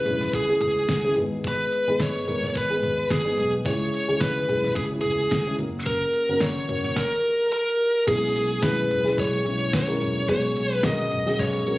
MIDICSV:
0, 0, Header, 1, 5, 480
1, 0, Start_track
1, 0, Tempo, 552995
1, 1248, Time_signature, 4, 2, 24, 8
1, 10227, End_track
2, 0, Start_track
2, 0, Title_t, "Lead electric guitar"
2, 0, Program_c, 0, 29
2, 0, Note_on_c, 0, 71, 88
2, 263, Note_off_c, 0, 71, 0
2, 302, Note_on_c, 0, 68, 81
2, 525, Note_off_c, 0, 68, 0
2, 536, Note_on_c, 0, 68, 71
2, 979, Note_off_c, 0, 68, 0
2, 1283, Note_on_c, 0, 71, 84
2, 1753, Note_on_c, 0, 73, 94
2, 1760, Note_off_c, 0, 71, 0
2, 2189, Note_off_c, 0, 73, 0
2, 2234, Note_on_c, 0, 71, 91
2, 2670, Note_off_c, 0, 71, 0
2, 2700, Note_on_c, 0, 68, 83
2, 3044, Note_off_c, 0, 68, 0
2, 3178, Note_on_c, 0, 73, 86
2, 3648, Note_on_c, 0, 71, 85
2, 3669, Note_off_c, 0, 73, 0
2, 4096, Note_off_c, 0, 71, 0
2, 4128, Note_on_c, 0, 68, 82
2, 4193, Note_off_c, 0, 68, 0
2, 4351, Note_on_c, 0, 68, 70
2, 4807, Note_off_c, 0, 68, 0
2, 5089, Note_on_c, 0, 70, 81
2, 5567, Note_on_c, 0, 73, 102
2, 5584, Note_off_c, 0, 70, 0
2, 6044, Note_on_c, 0, 70, 93
2, 6064, Note_off_c, 0, 73, 0
2, 6522, Note_off_c, 0, 70, 0
2, 6533, Note_on_c, 0, 70, 78
2, 6978, Note_off_c, 0, 70, 0
2, 7012, Note_on_c, 0, 68, 74
2, 7491, Note_off_c, 0, 68, 0
2, 7494, Note_on_c, 0, 71, 76
2, 7939, Note_off_c, 0, 71, 0
2, 7983, Note_on_c, 0, 73, 91
2, 8423, Note_off_c, 0, 73, 0
2, 8460, Note_on_c, 0, 73, 82
2, 8926, Note_off_c, 0, 73, 0
2, 8937, Note_on_c, 0, 73, 82
2, 9319, Note_off_c, 0, 73, 0
2, 9319, Note_on_c, 0, 71, 82
2, 9420, Note_off_c, 0, 71, 0
2, 9424, Note_on_c, 0, 75, 86
2, 9893, Note_off_c, 0, 75, 0
2, 9897, Note_on_c, 0, 73, 97
2, 10227, Note_off_c, 0, 73, 0
2, 10227, End_track
3, 0, Start_track
3, 0, Title_t, "Upright piano"
3, 0, Program_c, 1, 0
3, 0, Control_c, 1, 64, 127
3, 0, Note_on_c, 1, 49, 50
3, 0, Note_on_c, 1, 56, 67
3, 0, Note_on_c, 1, 61, 65
3, 0, Note_on_c, 1, 64, 62
3, 0, Note_on_c, 1, 68, 80
3, 51, Note_off_c, 1, 56, 0
3, 51, Note_on_c, 1, 56, 66
3, 55, Note_off_c, 1, 61, 0
3, 55, Note_on_c, 1, 61, 60
3, 55, Note_on_c, 1, 71, 72
3, 56, Note_off_c, 1, 64, 0
3, 56, Note_on_c, 1, 64, 62
3, 350, Note_off_c, 1, 56, 0
3, 352, Note_off_c, 1, 61, 0
3, 352, Note_off_c, 1, 71, 0
3, 353, Note_off_c, 1, 64, 0
3, 424, Note_on_c, 1, 56, 65
3, 424, Note_on_c, 1, 61, 57
3, 427, Note_on_c, 1, 64, 55
3, 428, Note_off_c, 1, 68, 0
3, 428, Note_on_c, 1, 68, 66
3, 806, Note_off_c, 1, 56, 0
3, 806, Note_off_c, 1, 61, 0
3, 807, Note_off_c, 1, 64, 0
3, 808, Note_off_c, 1, 68, 0
3, 905, Note_on_c, 1, 56, 67
3, 905, Note_on_c, 1, 64, 61
3, 906, Note_on_c, 1, 61, 56
3, 907, Note_on_c, 1, 68, 71
3, 1003, Note_off_c, 1, 56, 0
3, 1005, Note_off_c, 1, 68, 0
3, 1009, Note_off_c, 1, 64, 0
3, 1010, Note_off_c, 1, 61, 0
3, 1015, Note_on_c, 1, 63, 58
3, 1016, Note_on_c, 1, 44, 54
3, 1016, Note_on_c, 1, 56, 67
3, 1016, Note_on_c, 1, 59, 61
3, 1018, Note_on_c, 1, 68, 74
3, 1020, Control_c, 1, 64, 0
3, 1023, Note_off_c, 1, 49, 0
3, 1172, Control_c, 1, 64, 127
3, 1504, Note_off_c, 1, 63, 0
3, 1505, Note_off_c, 1, 56, 0
3, 1505, Note_off_c, 1, 59, 0
3, 1506, Note_off_c, 1, 68, 0
3, 1628, Note_on_c, 1, 56, 65
3, 1629, Note_on_c, 1, 59, 70
3, 1631, Note_on_c, 1, 68, 84
3, 1632, Note_on_c, 1, 63, 69
3, 1698, Note_off_c, 1, 44, 0
3, 1914, Note_off_c, 1, 56, 0
3, 1914, Note_off_c, 1, 59, 0
3, 1915, Note_off_c, 1, 68, 0
3, 1916, Note_off_c, 1, 63, 0
3, 1970, Note_on_c, 1, 56, 69
3, 1972, Note_on_c, 1, 59, 64
3, 1974, Note_on_c, 1, 70, 70
3, 1977, Note_on_c, 1, 63, 57
3, 2271, Note_off_c, 1, 56, 0
3, 2272, Note_off_c, 1, 59, 0
3, 2273, Note_off_c, 1, 70, 0
3, 2275, Note_off_c, 1, 63, 0
3, 2341, Note_on_c, 1, 59, 59
3, 2342, Note_on_c, 1, 56, 63
3, 2343, Note_on_c, 1, 63, 53
3, 2346, Note_on_c, 1, 68, 73
3, 2725, Note_off_c, 1, 59, 0
3, 2726, Note_off_c, 1, 56, 0
3, 2726, Note_off_c, 1, 63, 0
3, 2728, Note_off_c, 1, 68, 0
3, 2820, Note_on_c, 1, 56, 71
3, 2821, Note_on_c, 1, 59, 63
3, 2821, Note_on_c, 1, 63, 66
3, 2822, Note_on_c, 1, 68, 69
3, 3110, Note_off_c, 1, 56, 0
3, 3111, Note_off_c, 1, 59, 0
3, 3111, Note_off_c, 1, 63, 0
3, 3112, Note_off_c, 1, 68, 0
3, 3165, Note_on_c, 1, 56, 75
3, 3165, Note_on_c, 1, 61, 57
3, 3167, Note_on_c, 1, 49, 59
3, 3170, Note_on_c, 1, 64, 69
3, 3170, Note_on_c, 1, 68, 81
3, 3182, Control_c, 1, 64, 0
3, 3344, Control_c, 1, 64, 127
3, 3469, Note_off_c, 1, 56, 0
3, 3469, Note_off_c, 1, 61, 0
3, 3471, Note_off_c, 1, 64, 0
3, 3472, Note_off_c, 1, 68, 0
3, 3543, Note_on_c, 1, 61, 73
3, 3543, Note_on_c, 1, 64, 64
3, 3544, Note_on_c, 1, 56, 73
3, 3545, Note_on_c, 1, 68, 78
3, 3832, Note_off_c, 1, 61, 0
3, 3832, Note_off_c, 1, 64, 0
3, 3833, Note_off_c, 1, 56, 0
3, 3833, Note_off_c, 1, 68, 0
3, 3854, Note_off_c, 1, 49, 0
3, 3889, Note_on_c, 1, 61, 61
3, 3892, Note_on_c, 1, 56, 70
3, 3892, Note_on_c, 1, 64, 65
3, 3892, Note_on_c, 1, 68, 76
3, 4191, Note_off_c, 1, 61, 0
3, 4193, Note_off_c, 1, 56, 0
3, 4193, Note_off_c, 1, 64, 0
3, 4193, Note_off_c, 1, 68, 0
3, 4268, Note_on_c, 1, 61, 61
3, 4269, Note_on_c, 1, 56, 62
3, 4269, Note_on_c, 1, 64, 60
3, 4270, Note_on_c, 1, 68, 72
3, 4649, Note_off_c, 1, 61, 0
3, 4650, Note_off_c, 1, 56, 0
3, 4650, Note_off_c, 1, 64, 0
3, 4650, Note_off_c, 1, 68, 0
3, 4743, Note_on_c, 1, 56, 67
3, 4745, Note_on_c, 1, 61, 62
3, 4745, Note_on_c, 1, 68, 74
3, 4748, Note_on_c, 1, 64, 65
3, 4831, Note_off_c, 1, 61, 0
3, 4844, Note_on_c, 1, 61, 60
3, 4845, Note_on_c, 1, 58, 69
3, 4847, Note_on_c, 1, 66, 58
3, 4847, Note_on_c, 1, 70, 73
3, 4850, Note_off_c, 1, 56, 0
3, 4851, Note_off_c, 1, 68, 0
3, 4852, Note_off_c, 1, 64, 0
3, 4861, Control_c, 1, 64, 0
3, 5011, Control_c, 1, 64, 127
3, 5340, Note_off_c, 1, 58, 0
3, 5340, Note_off_c, 1, 61, 0
3, 5342, Note_off_c, 1, 66, 0
3, 5342, Note_off_c, 1, 70, 0
3, 5458, Note_on_c, 1, 58, 79
3, 5461, Note_on_c, 1, 61, 67
3, 5461, Note_on_c, 1, 66, 72
3, 5463, Note_on_c, 1, 70, 84
3, 5750, Note_off_c, 1, 58, 0
3, 5751, Note_off_c, 1, 61, 0
3, 5751, Note_off_c, 1, 66, 0
3, 5752, Note_off_c, 1, 70, 0
3, 5798, Note_on_c, 1, 58, 70
3, 5798, Note_on_c, 1, 61, 62
3, 5804, Note_on_c, 1, 66, 66
3, 5806, Note_on_c, 1, 73, 79
3, 6044, Note_off_c, 1, 61, 0
3, 6045, Note_off_c, 1, 58, 0
3, 6047, Note_off_c, 1, 66, 0
3, 6048, Note_off_c, 1, 73, 0
3, 6064, Control_c, 1, 64, 0
3, 7002, Note_on_c, 1, 47, 64
3, 7003, Note_on_c, 1, 56, 68
3, 7004, Note_on_c, 1, 61, 61
3, 7005, Note_on_c, 1, 68, 82
3, 7007, Note_on_c, 1, 64, 65
3, 7176, Control_c, 1, 64, 127
3, 7410, Note_off_c, 1, 56, 0
3, 7410, Note_off_c, 1, 61, 0
3, 7411, Note_off_c, 1, 68, 0
3, 7412, Note_off_c, 1, 64, 0
3, 7477, Note_on_c, 1, 56, 71
3, 7479, Note_on_c, 1, 68, 75
3, 7480, Note_on_c, 1, 61, 60
3, 7481, Note_on_c, 1, 64, 65
3, 7691, Note_off_c, 1, 47, 0
3, 7785, Note_off_c, 1, 56, 0
3, 7786, Note_off_c, 1, 61, 0
3, 7786, Note_off_c, 1, 68, 0
3, 7787, Note_off_c, 1, 64, 0
3, 7845, Note_on_c, 1, 56, 72
3, 7850, Note_on_c, 1, 61, 61
3, 7851, Note_on_c, 1, 64, 59
3, 7854, Note_on_c, 1, 68, 78
3, 8143, Note_off_c, 1, 56, 0
3, 8145, Note_off_c, 1, 61, 0
3, 8146, Note_off_c, 1, 64, 0
3, 8147, Note_off_c, 1, 68, 0
3, 8196, Note_on_c, 1, 56, 61
3, 8196, Note_on_c, 1, 61, 58
3, 8199, Note_on_c, 1, 68, 69
3, 8200, Note_on_c, 1, 64, 57
3, 8504, Note_off_c, 1, 56, 0
3, 8504, Note_off_c, 1, 61, 0
3, 8506, Note_off_c, 1, 64, 0
3, 8506, Note_off_c, 1, 68, 0
3, 8573, Note_on_c, 1, 61, 65
3, 8575, Note_on_c, 1, 56, 68
3, 8575, Note_on_c, 1, 64, 67
3, 8577, Note_on_c, 1, 70, 77
3, 8867, Note_off_c, 1, 56, 0
3, 8867, Note_off_c, 1, 61, 0
3, 8868, Note_off_c, 1, 64, 0
3, 8868, Note_off_c, 1, 70, 0
3, 8924, Note_on_c, 1, 56, 74
3, 8924, Note_on_c, 1, 61, 65
3, 8925, Note_on_c, 1, 66, 63
3, 8926, Note_on_c, 1, 47, 66
3, 8926, Note_on_c, 1, 68, 79
3, 8940, Control_c, 1, 64, 0
3, 9070, Control_c, 1, 64, 127
3, 9330, Note_off_c, 1, 56, 0
3, 9330, Note_off_c, 1, 61, 0
3, 9330, Note_off_c, 1, 66, 0
3, 9331, Note_off_c, 1, 68, 0
3, 9404, Note_on_c, 1, 56, 77
3, 9405, Note_on_c, 1, 61, 65
3, 9408, Note_on_c, 1, 66, 66
3, 9409, Note_on_c, 1, 70, 81
3, 9613, Note_off_c, 1, 47, 0
3, 9708, Note_off_c, 1, 56, 0
3, 9708, Note_off_c, 1, 61, 0
3, 9709, Note_off_c, 1, 66, 0
3, 9710, Note_off_c, 1, 70, 0
3, 9776, Note_on_c, 1, 56, 75
3, 9776, Note_on_c, 1, 61, 69
3, 9777, Note_on_c, 1, 66, 67
3, 9782, Note_on_c, 1, 68, 74
3, 10067, Note_off_c, 1, 56, 0
3, 10068, Note_off_c, 1, 61, 0
3, 10068, Note_off_c, 1, 66, 0
3, 10071, Note_off_c, 1, 68, 0
3, 10122, Note_on_c, 1, 56, 64
3, 10124, Note_on_c, 1, 66, 63
3, 10127, Note_on_c, 1, 61, 61
3, 10127, Note_on_c, 1, 70, 66
3, 10227, Note_off_c, 1, 56, 0
3, 10227, Note_off_c, 1, 61, 0
3, 10227, Note_off_c, 1, 66, 0
3, 10227, Note_off_c, 1, 70, 0
3, 10227, End_track
4, 0, Start_track
4, 0, Title_t, "Fingered electric bass"
4, 0, Program_c, 2, 33
4, 57, Note_on_c, 2, 35, 68
4, 250, Note_off_c, 2, 35, 0
4, 291, Note_on_c, 2, 37, 95
4, 486, Note_off_c, 2, 37, 0
4, 539, Note_on_c, 2, 37, 81
4, 731, Note_off_c, 2, 37, 0
4, 771, Note_on_c, 2, 37, 92
4, 1016, Note_on_c, 2, 32, 83
4, 1029, Note_off_c, 2, 37, 0
4, 1407, Note_off_c, 2, 32, 0
4, 1626, Note_on_c, 2, 32, 85
4, 1712, Note_off_c, 2, 32, 0
4, 1733, Note_on_c, 2, 32, 88
4, 1929, Note_off_c, 2, 32, 0
4, 1970, Note_on_c, 2, 32, 74
4, 2167, Note_off_c, 2, 32, 0
4, 2218, Note_on_c, 2, 32, 102
4, 2411, Note_off_c, 2, 32, 0
4, 2452, Note_on_c, 2, 32, 87
4, 2648, Note_off_c, 2, 32, 0
4, 2692, Note_on_c, 2, 32, 99
4, 2888, Note_off_c, 2, 32, 0
4, 2929, Note_on_c, 2, 35, 101
4, 3126, Note_off_c, 2, 35, 0
4, 3172, Note_on_c, 2, 37, 99
4, 3368, Note_off_c, 2, 37, 0
4, 3546, Note_on_c, 2, 37, 96
4, 3632, Note_off_c, 2, 37, 0
4, 3651, Note_on_c, 2, 37, 92
4, 3848, Note_off_c, 2, 37, 0
4, 3888, Note_on_c, 2, 35, 80
4, 4086, Note_off_c, 2, 35, 0
4, 4134, Note_on_c, 2, 37, 101
4, 4330, Note_off_c, 2, 37, 0
4, 4364, Note_on_c, 2, 37, 84
4, 4564, Note_off_c, 2, 37, 0
4, 4612, Note_on_c, 2, 37, 92
4, 4809, Note_off_c, 2, 37, 0
4, 4848, Note_on_c, 2, 30, 96
4, 5243, Note_off_c, 2, 30, 0
4, 5459, Note_on_c, 2, 30, 95
4, 5548, Note_off_c, 2, 30, 0
4, 5565, Note_on_c, 2, 30, 96
4, 5764, Note_off_c, 2, 30, 0
4, 5803, Note_on_c, 2, 30, 82
4, 6003, Note_off_c, 2, 30, 0
4, 7010, Note_on_c, 2, 35, 100
4, 7207, Note_off_c, 2, 35, 0
4, 7244, Note_on_c, 2, 35, 83
4, 7444, Note_off_c, 2, 35, 0
4, 7487, Note_on_c, 2, 35, 106
4, 7685, Note_off_c, 2, 35, 0
4, 7726, Note_on_c, 2, 35, 87
4, 7924, Note_off_c, 2, 35, 0
4, 7971, Note_on_c, 2, 35, 99
4, 8168, Note_off_c, 2, 35, 0
4, 8213, Note_on_c, 2, 35, 93
4, 8408, Note_off_c, 2, 35, 0
4, 8448, Note_on_c, 2, 35, 101
4, 8646, Note_off_c, 2, 35, 0
4, 8690, Note_on_c, 2, 35, 101
4, 8887, Note_off_c, 2, 35, 0
4, 8930, Note_on_c, 2, 35, 91
4, 9127, Note_off_c, 2, 35, 0
4, 9174, Note_on_c, 2, 35, 92
4, 9369, Note_off_c, 2, 35, 0
4, 9406, Note_on_c, 2, 35, 108
4, 9604, Note_off_c, 2, 35, 0
4, 9653, Note_on_c, 2, 35, 87
4, 9848, Note_off_c, 2, 35, 0
4, 9888, Note_on_c, 2, 35, 115
4, 10085, Note_off_c, 2, 35, 0
4, 10129, Note_on_c, 2, 35, 92
4, 10227, Note_off_c, 2, 35, 0
4, 10227, End_track
5, 0, Start_track
5, 0, Title_t, "Drums"
5, 51, Note_on_c, 9, 43, 58
5, 53, Note_on_c, 9, 42, 80
5, 138, Note_off_c, 9, 43, 0
5, 139, Note_off_c, 9, 42, 0
5, 182, Note_on_c, 9, 43, 62
5, 183, Note_on_c, 9, 38, 31
5, 269, Note_off_c, 9, 38, 0
5, 269, Note_off_c, 9, 43, 0
5, 284, Note_on_c, 9, 42, 83
5, 290, Note_on_c, 9, 36, 96
5, 371, Note_off_c, 9, 42, 0
5, 377, Note_off_c, 9, 36, 0
5, 527, Note_on_c, 9, 43, 56
5, 529, Note_on_c, 9, 42, 61
5, 613, Note_off_c, 9, 43, 0
5, 616, Note_off_c, 9, 42, 0
5, 769, Note_on_c, 9, 38, 110
5, 771, Note_on_c, 9, 36, 101
5, 772, Note_on_c, 9, 42, 90
5, 856, Note_off_c, 9, 38, 0
5, 858, Note_off_c, 9, 36, 0
5, 858, Note_off_c, 9, 42, 0
5, 1005, Note_on_c, 9, 42, 70
5, 1007, Note_on_c, 9, 43, 47
5, 1092, Note_off_c, 9, 42, 0
5, 1094, Note_off_c, 9, 43, 0
5, 1251, Note_on_c, 9, 42, 88
5, 1253, Note_on_c, 9, 36, 100
5, 1338, Note_off_c, 9, 42, 0
5, 1340, Note_off_c, 9, 36, 0
5, 1495, Note_on_c, 9, 42, 80
5, 1582, Note_off_c, 9, 42, 0
5, 1733, Note_on_c, 9, 36, 102
5, 1735, Note_on_c, 9, 42, 75
5, 1736, Note_on_c, 9, 38, 109
5, 1820, Note_off_c, 9, 36, 0
5, 1822, Note_off_c, 9, 42, 0
5, 1823, Note_off_c, 9, 38, 0
5, 1978, Note_on_c, 9, 43, 55
5, 1979, Note_on_c, 9, 42, 81
5, 2065, Note_off_c, 9, 43, 0
5, 2066, Note_off_c, 9, 42, 0
5, 2111, Note_on_c, 9, 43, 62
5, 2112, Note_on_c, 9, 38, 35
5, 2198, Note_off_c, 9, 38, 0
5, 2198, Note_off_c, 9, 43, 0
5, 2217, Note_on_c, 9, 36, 96
5, 2219, Note_on_c, 9, 42, 86
5, 2304, Note_off_c, 9, 36, 0
5, 2306, Note_off_c, 9, 42, 0
5, 2458, Note_on_c, 9, 43, 57
5, 2460, Note_on_c, 9, 42, 64
5, 2545, Note_off_c, 9, 43, 0
5, 2547, Note_off_c, 9, 42, 0
5, 2695, Note_on_c, 9, 36, 113
5, 2701, Note_on_c, 9, 38, 107
5, 2703, Note_on_c, 9, 42, 90
5, 2782, Note_off_c, 9, 36, 0
5, 2787, Note_off_c, 9, 38, 0
5, 2790, Note_off_c, 9, 42, 0
5, 2934, Note_on_c, 9, 42, 68
5, 2936, Note_on_c, 9, 43, 52
5, 3021, Note_off_c, 9, 42, 0
5, 3023, Note_off_c, 9, 43, 0
5, 3169, Note_on_c, 9, 42, 99
5, 3174, Note_on_c, 9, 36, 96
5, 3255, Note_off_c, 9, 42, 0
5, 3260, Note_off_c, 9, 36, 0
5, 3420, Note_on_c, 9, 42, 77
5, 3506, Note_off_c, 9, 42, 0
5, 3652, Note_on_c, 9, 36, 96
5, 3654, Note_on_c, 9, 42, 75
5, 3655, Note_on_c, 9, 38, 114
5, 3739, Note_off_c, 9, 36, 0
5, 3741, Note_off_c, 9, 42, 0
5, 3742, Note_off_c, 9, 38, 0
5, 3899, Note_on_c, 9, 43, 59
5, 3901, Note_on_c, 9, 42, 77
5, 3986, Note_off_c, 9, 43, 0
5, 3988, Note_off_c, 9, 42, 0
5, 4031, Note_on_c, 9, 43, 65
5, 4032, Note_on_c, 9, 38, 32
5, 4118, Note_off_c, 9, 38, 0
5, 4118, Note_off_c, 9, 43, 0
5, 4134, Note_on_c, 9, 36, 98
5, 4136, Note_on_c, 9, 42, 88
5, 4221, Note_off_c, 9, 36, 0
5, 4222, Note_off_c, 9, 42, 0
5, 4371, Note_on_c, 9, 43, 53
5, 4373, Note_on_c, 9, 42, 62
5, 4457, Note_off_c, 9, 43, 0
5, 4460, Note_off_c, 9, 42, 0
5, 4612, Note_on_c, 9, 36, 112
5, 4616, Note_on_c, 9, 38, 109
5, 4619, Note_on_c, 9, 42, 86
5, 4699, Note_off_c, 9, 36, 0
5, 4703, Note_off_c, 9, 38, 0
5, 4705, Note_off_c, 9, 42, 0
5, 4850, Note_on_c, 9, 42, 67
5, 4852, Note_on_c, 9, 43, 50
5, 4937, Note_off_c, 9, 42, 0
5, 4939, Note_off_c, 9, 43, 0
5, 5088, Note_on_c, 9, 42, 90
5, 5090, Note_on_c, 9, 36, 94
5, 5175, Note_off_c, 9, 42, 0
5, 5177, Note_off_c, 9, 36, 0
5, 5325, Note_on_c, 9, 42, 81
5, 5412, Note_off_c, 9, 42, 0
5, 5558, Note_on_c, 9, 42, 83
5, 5560, Note_on_c, 9, 38, 104
5, 5566, Note_on_c, 9, 36, 101
5, 5645, Note_off_c, 9, 42, 0
5, 5646, Note_off_c, 9, 38, 0
5, 5652, Note_off_c, 9, 36, 0
5, 5806, Note_on_c, 9, 43, 58
5, 5808, Note_on_c, 9, 42, 79
5, 5893, Note_off_c, 9, 43, 0
5, 5895, Note_off_c, 9, 42, 0
5, 5939, Note_on_c, 9, 43, 64
5, 5940, Note_on_c, 9, 38, 32
5, 6026, Note_off_c, 9, 43, 0
5, 6027, Note_off_c, 9, 38, 0
5, 6044, Note_on_c, 9, 38, 77
5, 6047, Note_on_c, 9, 36, 88
5, 6131, Note_off_c, 9, 38, 0
5, 6134, Note_off_c, 9, 36, 0
5, 7008, Note_on_c, 9, 42, 98
5, 7009, Note_on_c, 9, 49, 92
5, 7010, Note_on_c, 9, 36, 103
5, 7095, Note_off_c, 9, 42, 0
5, 7096, Note_off_c, 9, 49, 0
5, 7097, Note_off_c, 9, 36, 0
5, 7256, Note_on_c, 9, 42, 90
5, 7343, Note_off_c, 9, 42, 0
5, 7488, Note_on_c, 9, 36, 107
5, 7488, Note_on_c, 9, 42, 85
5, 7490, Note_on_c, 9, 38, 121
5, 7575, Note_off_c, 9, 36, 0
5, 7575, Note_off_c, 9, 42, 0
5, 7577, Note_off_c, 9, 38, 0
5, 7733, Note_on_c, 9, 43, 59
5, 7735, Note_on_c, 9, 42, 81
5, 7820, Note_off_c, 9, 43, 0
5, 7822, Note_off_c, 9, 42, 0
5, 7863, Note_on_c, 9, 38, 35
5, 7950, Note_off_c, 9, 38, 0
5, 7969, Note_on_c, 9, 42, 91
5, 7970, Note_on_c, 9, 36, 109
5, 8056, Note_off_c, 9, 42, 0
5, 8057, Note_off_c, 9, 36, 0
5, 8211, Note_on_c, 9, 42, 64
5, 8297, Note_off_c, 9, 42, 0
5, 8449, Note_on_c, 9, 36, 114
5, 8450, Note_on_c, 9, 38, 121
5, 8452, Note_on_c, 9, 42, 90
5, 8536, Note_off_c, 9, 36, 0
5, 8537, Note_off_c, 9, 38, 0
5, 8539, Note_off_c, 9, 42, 0
5, 8690, Note_on_c, 9, 42, 64
5, 8692, Note_on_c, 9, 43, 51
5, 8777, Note_off_c, 9, 42, 0
5, 8779, Note_off_c, 9, 43, 0
5, 8925, Note_on_c, 9, 42, 94
5, 8929, Note_on_c, 9, 36, 106
5, 9012, Note_off_c, 9, 42, 0
5, 9016, Note_off_c, 9, 36, 0
5, 9172, Note_on_c, 9, 42, 87
5, 9259, Note_off_c, 9, 42, 0
5, 9401, Note_on_c, 9, 42, 74
5, 9403, Note_on_c, 9, 38, 118
5, 9408, Note_on_c, 9, 36, 106
5, 9488, Note_off_c, 9, 42, 0
5, 9490, Note_off_c, 9, 38, 0
5, 9495, Note_off_c, 9, 36, 0
5, 9647, Note_on_c, 9, 43, 62
5, 9649, Note_on_c, 9, 42, 81
5, 9734, Note_off_c, 9, 43, 0
5, 9736, Note_off_c, 9, 42, 0
5, 9782, Note_on_c, 9, 38, 36
5, 9869, Note_off_c, 9, 38, 0
5, 9888, Note_on_c, 9, 42, 91
5, 9890, Note_on_c, 9, 36, 114
5, 9975, Note_off_c, 9, 42, 0
5, 9977, Note_off_c, 9, 36, 0
5, 10128, Note_on_c, 9, 42, 72
5, 10215, Note_off_c, 9, 42, 0
5, 10227, End_track
0, 0, End_of_file